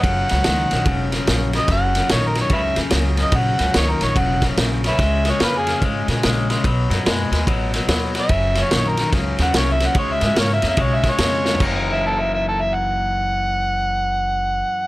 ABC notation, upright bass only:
X:1
M:4/4
L:1/8
Q:"Swing" 1/4=145
K:F#mix
V:1 name="Upright bass" clef=bass
F,,, C,, C,, A,,, E,,,2 A,,,2 | F,,,2 A,,,2 C,, D,, C,,2 | A,,, C,, C,, A,,, E,,,2 A,,,2 | C,,2 ^E,,2 G,, A,, A,,,2 |
B,,, F,, F,, D,, =A,,,2 D,,2 | F,,,2 A,,,2 C,, D,, ^B,,,2 | C,, G,, G,, ^E,, B,,,2 E,,2 | F,,,8- |
F,,,8 |]